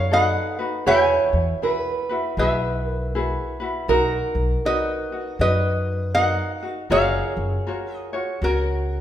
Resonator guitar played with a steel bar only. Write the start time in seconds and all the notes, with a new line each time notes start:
Already playing: C#5 F5
0.13 D#5 F#5
0.87 E5 G#5
2.39 B4 E5
4.66 B4 D#5
5.41 B4 D#5
6.15 D#5 F#5
6.65 F5
6.92 C#5 F5
7.96 D#5
8.44 F#4 A#4